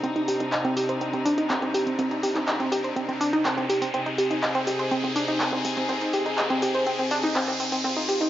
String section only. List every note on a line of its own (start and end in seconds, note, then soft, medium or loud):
0.00 3.90 C3 medium
0.00 3.90 C4 medium
0.00 3.90 D4 medium
0.00 3.90 D#4 medium
3.94 8.30 C3 medium
3.94 8.30 C4 medium
3.94 7.80 D#4 medium
3.94 8.30 G#4 medium
7.84 8.30 F4 medium